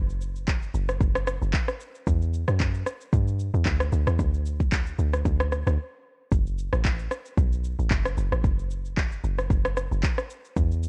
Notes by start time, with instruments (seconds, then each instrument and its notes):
Already playing: log drum bass F#1
0.09 shaker
0.21 shaker
0.35 shaker
0.47 kick, clap, shaker
0.62 shaker
0.74 log drum bass F#1, shaker
0.88 cross-stick, shaker
1.01 log drum bass F#1, kick, shaker
1.15 cross-stick, shaker
1.27 cross-stick, shaker
1.42 log drum bass F#1, shaker
1.53 kick, clap, shaker
1.68 cross-stick, shaker
1.80 shaker
1.95 shaker
2.07 log drum bass E2, kick, shaker
2.22 shaker
2.33 shaker
2.48 log drum bass F#2, cross-stick, shaker
2.60 kick, clap, shaker
2.74 shaker
2.86 cross-stick, shaker
3.01 shaker
3.13 log drum bass G2, kick, shaker
3.28 shaker
3.39 shaker
3.54 log drum bass E2, shaker
3.66 log drum bass D2, kick, clap, shaker
3.80 cross-stick, shaker
3.93 log drum bass D2, shaker
4.07 log drum bass E2, cross-stick, shaker
4.19 log drum bass D2, kick, shaker
4.34 shaker
4.46 shaker
4.60 kick, shaker
4.72 kick, clap, shaker
4.87 shaker
4.99 log drum bass D2, shaker
5.13 cross-stick, shaker
5.25 log drum bass D2, kick, shaker
5.40 cross-stick, shaker
5.52 cross-stick, shaker
5.66 log drum bass D2, cross-stick, shaker
6.32 log drum bass F#1, kick, shaker
6.47 shaker
6.58 shaker
6.73 log drum bass A1, cross-stick, shaker
6.85 kick, clap, shaker
6.99 shaker
7.11 cross-stick, shaker
7.26 shaker
7.38 log drum bass B1, kick, shaker
7.53 shaker
7.64 shaker
7.79 log drum bass A1, shaker
7.91 log drum bass F#1, kick, clap, shaker
8.05 cross-stick, shaker
8.17 log drum bass F#1, shaker
8.32 log drum bass A1, cross-stick, shaker
8.44 log drum bass F#1, kick, shaker
8.59 shaker
8.71 shaker
8.85 shaker
8.97 kick, clap, shaker
9.12 shaker
9.24 log drum bass F#1, shaker
9.38 cross-stick, shaker
9.50 log drum bass F#1, kick, shaker
9.65 cross-stick, shaker
9.77 cross-stick, shaker
9.91 log drum bass F#1, shaker
10.03 kick, clap, shaker
10.18 cross-stick, shaker
10.30 shaker
10.45 shaker
10.56 log drum bass E2, kick, shaker
10.71 shaker
10.83 shaker